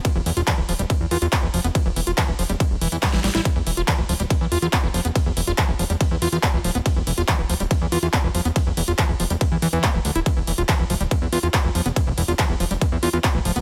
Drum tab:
RD |x---x---x---x---|x---x---x---x---|x---x---x---x---|x---x---x---x---|
HH |x-oxx-oxx-oxx-ox|x-oxx-oxx-oxx-ox|x-oxx-oxx-oxx-ox|x-oxx-oxx-oxx-ox|
CP |----x-------x---|----x-------x---|----x-------x---|----x-------x---|
SD |----------------|------------oooo|----------------|----------------|
BD |o---o---o---o---|o---o---o---o---|o---o---o---o---|o---o---o---o---|

RD |x---x---x---x---|x---x---x---x---|x---x---x---x---|x---x---x---x---|
HH |x-oxx-oxx-oxx-ox|x-oxx-oxx-oxx-ox|x-oxx-oxx-oxx-ox|x-oxx-oxx-oxx-ox|
CP |----x-------x---|----x-------x---|----x-------x---|----x-------x---|
SD |----------------|----------------|----------------|----------------|
BD |o---o---o---o---|o---o---o---o---|o---o---o---o---|o---o---o---o---|